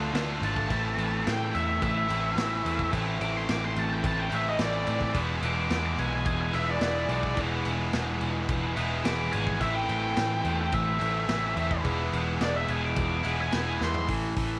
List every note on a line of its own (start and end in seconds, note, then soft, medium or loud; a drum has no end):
0.00 0.11 D2 medium
0.00 0.12 D3 medium
0.00 0.14 A3 medium
0.00 0.13 D4 medium
0.00 0.12 F4 medium
0.13 0.38 D2 medium
0.13 0.68 D3 medium
0.13 0.70 A3 medium
0.13 0.36 D4 medium
0.13 0.69 D4 loud
0.13 0.36 F4 medium
0.13 0.70 F4 loud
0.13 0.37 C5 loud
0.13 snare loud
0.13 crash medium
0.41 0.66 G#1 loud
0.41 0.63 D4 medium
0.41 0.63 F4 medium
0.41 0.64 B4 medium
0.41 1.24 A5 loud
0.41 crash medium
0.56 kick medium
0.68 0.95 A1 loud
0.68 2.06 A2 medium
0.68 2.11 E3 medium
0.68 2.08 A3 loud
0.68 2.08 C4 medium
0.68 0.93 C4 medium
0.68 2.08 E4 medium
0.68 0.93 E4 medium
0.68 kick loud
0.68 crash medium
0.73 0.93 A4 loud
0.97 1.22 A1 medium
0.97 1.19 C4 medium
0.97 1.19 E4 medium
0.97 1.19 A4 medium
0.97 crash medium
1.26 1.51 A2 medium
1.26 1.48 C4 medium
1.26 1.48 E4 medium
1.26 1.48 G#4 medium
1.26 1.54 G5 medium
1.26 snare loud
1.26 crash medium
1.53 1.79 E2 loud
1.53 1.75 C4 medium
1.53 1.75 E4 medium
1.53 1.75 A4 medium
1.53 1.81 E5 loud
1.53 crash medium
1.81 2.06 A1 medium
1.81 2.03 C4 medium
1.81 2.03 E4 medium
1.81 2.04 A4 loud
1.81 2.90 E5 loud
1.81 kick loud
1.81 crash medium
2.08 2.34 A1 medium
2.08 2.34 A2 medium
2.08 2.36 E3 medium
2.08 2.36 A3 medium
2.08 2.35 C4 medium
2.08 2.31 C4 medium
2.08 2.38 E4 medium
2.08 2.31 E4 medium
2.08 2.31 A4 medium
2.08 crash medium
2.35 2.61 A1 medium
2.35 2.90 A2 medium
2.35 2.92 E3 medium
2.35 2.91 A3 medium
2.35 2.58 C4 medium
2.35 2.91 C4 medium
2.35 2.59 E4 medium
2.35 2.94 E4 loud
2.35 2.58 B4 medium
2.35 snare loud
2.35 crash medium
2.65 2.89 E2 medium
2.65 2.86 C4 medium
2.65 2.86 E4 medium
2.65 2.87 A4 medium
2.65 crash medium
2.79 kick medium
2.91 3.17 A1 loud
2.91 4.29 A2 medium
2.91 4.32 E3 medium
2.91 4.30 A3 medium
2.91 3.13 C4 loud
2.91 4.30 C4 loud
2.91 3.14 E4 loud
2.91 4.29 E4 loud
2.91 3.14 A4 loud
2.91 kick medium
2.91 crash medium
3.18 3.45 A1 loud
3.18 3.41 C4 medium
3.18 3.41 E4 medium
3.18 3.42 C5 medium
3.18 3.37 D6 medium
3.18 crash medium
3.37 3.51 C6 loud
3.47 3.73 A1 medium
3.47 3.69 C4 medium
3.47 3.69 E4 medium
3.47 3.69 G#4 medium
3.47 3.63 D6 medium
3.47 snare loud
3.47 crash medium
3.65 3.77 C6 loud
3.74 4.01 A1 medium
3.74 3.97 C4 medium
3.74 3.97 E4 medium
3.74 3.98 A4 medium
3.74 crash medium
3.79 3.93 A5 loud
3.93 4.06 G5 loud
4.02 4.28 A1 medium
4.02 4.25 C4 loud
4.02 4.24 E4 loud
4.02 4.25 A4 loud
4.02 4.20 A5 loud
4.02 kick loud
4.02 crash medium
4.20 4.35 G5 medium
4.30 4.57 A1 medium
4.30 4.57 A2 medium
4.30 4.58 E3 medium
4.30 4.58 A3 medium
4.30 4.57 C4 medium
4.30 4.53 C4 medium
4.30 4.61 E4 medium
4.30 4.53 E4 medium
4.30 4.53 G#4 medium
4.30 crash medium
4.35 4.47 E5 medium
4.49 4.61 D#5 loud
4.58 4.84 A1 medium
4.58 5.13 A2 medium
4.58 5.12 E3 medium
4.58 5.14 A3 medium
4.58 4.80 C4 medium
4.58 5.14 C4 medium
4.58 4.80 E4 medium
4.58 5.16 E4 loud
4.58 4.81 A4 medium
4.58 4.87 D5 medium
4.58 snare loud
4.58 crash loud
4.85 5.12 A2 medium
4.85 5.08 C4 medium
4.85 5.08 E4 medium
4.85 5.08 B4 medium
4.85 5.15 D5 loud
4.85 crash medium
5.01 kick medium
5.13 5.39 E1 medium
5.13 6.55 E3 medium
5.13 6.53 G#3 medium
5.13 6.52 B3 medium
5.13 5.35 D4 medium
5.13 6.52 E4 medium
5.13 5.36 F4 medium
5.13 5.36 G#4 loud
5.13 kick loud
5.13 crash medium
5.42 5.67 E1 loud
5.42 5.64 D4 medium
5.42 5.64 F4 medium
5.42 5.65 G#4 medium
5.42 5.58 D6 loud
5.42 crash medium
5.60 5.72 D6 medium
5.69 5.95 E2 loud
5.69 5.92 D4 medium
5.69 5.91 F4 medium
5.69 5.92 B4 medium
5.69 snare loud
5.69 crash medium
5.73 5.85 D6 medium
5.86 5.99 D6 medium
5.98 6.23 B1 medium
5.98 6.20 D4 medium
5.98 6.20 F4 medium
5.98 6.21 B4 medium
5.98 6.12 G#5 loud
5.98 crash medium
6.14 6.25 G#5 loud
6.25 6.50 E1 loud
6.25 6.47 D4 medium
6.25 6.47 F4 medium
6.25 6.48 B4 loud
6.25 6.40 G#5 loud
6.25 kick loud
6.25 crash medium
6.41 6.54 G#5 loud
6.52 6.79 E1 medium
6.52 6.79 E3 medium
6.52 6.80 G#3 medium
6.52 6.80 B3 medium
6.52 6.76 D4 medium
6.52 6.83 E4 medium
6.52 6.75 F4 medium
6.52 6.75 B4 medium
6.52 6.68 E5 loud
6.52 crash medium
6.71 6.81 D5 loud
6.80 7.06 E1 medium
6.80 7.35 E3 medium
6.80 7.36 G#3 medium
6.80 7.36 B3 medium
6.80 7.03 D4 medium
6.80 7.38 E4 loud
6.80 7.03 F4 medium
6.80 7.04 G#4 medium
6.80 7.08 D5 medium
6.80 snare loud
6.80 crash medium
7.09 7.34 B1 medium
7.09 7.31 D4 medium
7.09 7.32 F4 medium
7.09 7.32 B4 medium
7.09 7.37 D5 loud
7.09 crash medium
7.23 kick medium
7.36 7.62 E1 loud
7.36 8.79 E3 medium
7.36 8.75 G#3 medium
7.36 8.75 B3 medium
7.36 7.59 D4 loud
7.36 8.75 E4 medium
7.36 7.59 F4 medium
7.36 7.60 G#4 loud
7.36 kick loud
7.36 crash medium
7.65 7.90 E1 medium
7.65 7.87 D4 loud
7.65 7.87 F4 medium
7.65 7.88 B4 loud
7.65 crash medium
7.93 8.18 E1 loud
7.93 8.15 D4 medium
7.93 8.15 F4 medium
7.93 8.16 G#4 medium
7.93 snare loud
7.93 crash medium
8.21 8.46 E1 loud
8.21 8.43 D4 medium
8.21 8.43 F4 medium
8.21 8.44 G#4 loud
8.21 crash medium
8.48 8.74 E1 loud
8.48 8.70 D4 loud
8.48 8.71 F4 loud
8.48 8.71 G#4 loud
8.48 kick loud
8.48 crash medium
8.76 9.02 E1 medium
8.76 9.03 E3 medium
8.76 9.04 G#3 medium
8.76 9.03 B3 medium
8.76 8.99 D4 medium
8.76 9.07 E4 medium
8.76 8.99 F4 medium
8.76 8.99 G#4 medium
8.76 crash medium
9.04 9.29 E1 medium
9.04 9.60 E3 medium
9.04 9.59 G#3 medium
9.04 9.60 B3 medium
9.04 9.26 D4 medium
9.04 9.62 E4 medium
9.04 9.27 F4 medium
9.04 9.27 G#4 medium
9.04 9.32 D6 loud
9.04 snare loud
9.04 crash medium
9.32 9.58 G#1 medium
9.32 9.55 D4 medium
9.32 9.55 F4 medium
9.32 9.55 G#4 medium
9.32 9.60 G#5 loud
9.32 crash medium
9.47 kick medium
9.58 9.85 A1 loud
9.58 10.98 A2 medium
9.58 11.01 E3 medium
9.58 10.99 A3 medium
9.58 9.81 C4 medium
9.58 10.98 C4 medium
9.58 9.82 E4 medium
9.58 9.82 A4 loud
9.58 9.74 E5 loud
9.58 kick medium
9.58 crash medium
9.63 10.98 E4 medium
9.74 10.56 G5 loud
9.89 10.13 A1 loud
9.89 10.10 C4 medium
9.89 10.11 E4 medium
9.89 10.11 A4 medium
9.89 crash medium
10.15 10.41 A2 loud
10.15 10.37 C4 medium
10.15 10.38 E4 medium
10.15 10.38 B4 medium
10.15 snare loud
10.15 crash medium
10.44 10.69 E2 medium
10.44 10.66 C4 medium
10.44 10.66 E4 medium
10.44 10.66 A4 medium
10.44 crash medium
10.61 10.74 G5 loud
10.72 10.97 A1 loud
10.72 10.94 C4 loud
10.72 10.94 E4 medium
10.72 10.94 C5 loud
10.72 11.82 E5 loud
10.72 kick loud
10.72 crash medium
10.99 11.25 A1 medium
10.99 11.26 A2 medium
10.99 11.28 E3 medium
10.99 11.27 A3 medium
10.99 11.21 C4 medium
10.99 11.26 C4 medium
10.99 11.30 E4 medium
10.99 11.22 E4 medium
10.99 11.22 A4 medium
10.99 crash medium
11.27 11.53 A1 medium
11.27 11.82 A2 medium
11.27 11.83 E3 loud
11.27 11.83 A3 loud
11.27 11.50 C4 medium
11.27 11.83 C4 loud
11.27 11.51 E4 medium
11.27 11.86 E4 loud
11.27 11.51 A4 medium
11.27 snare loud
11.27 crash medium
11.56 11.81 E2 medium
11.56 11.78 C4 medium
11.56 11.78 E4 medium
11.56 11.78 C5 loud
11.56 crash medium
11.71 kick medium
11.83 12.09 E1 loud
11.83 13.22 E3 medium
11.83 13.22 G#3 medium
11.83 13.23 B3 loud
11.83 12.05 D4 loud
11.83 13.22 E4 medium
11.83 12.06 F4 loud
11.83 12.06 G#4 loud
11.83 kick medium
11.83 crash medium
12.13 12.37 E1 medium
12.13 12.34 D4 medium
12.13 12.34 F4 medium
12.13 12.35 B4 loud
12.13 crash medium
12.41 12.65 E1 loud
12.41 12.62 D4 medium
12.41 12.62 F4 medium
12.41 12.63 B4 medium
12.41 12.55 D5 medium
12.41 snare loud
12.41 crash medium
12.56 12.69 E5 loud
12.68 12.93 E1 loud
12.68 12.89 D4 medium
12.68 12.90 F4 medium
12.68 12.90 G#4 medium
12.68 12.83 G#5 loud
12.68 crash medium
12.85 13.38 D6 loud
12.96 13.21 E1 medium
12.96 13.18 D4 loud
12.96 13.18 F4 loud
12.96 13.19 G#4 loud
12.96 kick loud
12.96 crash medium
13.23 13.49 E1 medium
13.23 13.50 E3 medium
13.23 13.51 G#3 medium
13.23 13.51 B3 medium
13.23 13.46 D4 medium
13.23 13.50 E4 medium
13.23 13.47 F4 medium
13.23 13.47 G#4 medium
13.23 crash medium
13.41 13.80 G#5 loud
13.51 13.77 E1 medium
13.51 14.06 E3 medium
13.51 14.07 G#3 medium
13.51 14.07 B3 medium
13.51 13.75 D4 medium
13.51 14.08 E4 loud
13.51 13.75 F4 medium
13.51 13.75 G#4 medium
13.51 snare loud
13.51 crash medium
13.81 14.05 E2 medium
13.81 14.02 D4 medium
13.81 14.03 F4 medium
13.81 14.03 G#4 medium
13.81 14.09 C6 loud
13.81 snare medium
13.94 floor tom medium
14.07 14.33 A1 medium
14.07 14.33 A2 medium
14.07 14.33 E3 medium
14.07 14.29 C4 medium
14.07 14.29 E4 medium
14.07 14.30 A4 medium
14.07 kick loud
14.07 open hi-hat medium
14.35 14.60 A1 medium
14.35 14.60 A2 medium
14.35 14.60 E3 medium
14.35 14.57 C4 medium
14.35 14.57 E4 medium
14.35 14.58 A4 medium
14.35 kick medium
14.35 open hi-hat medium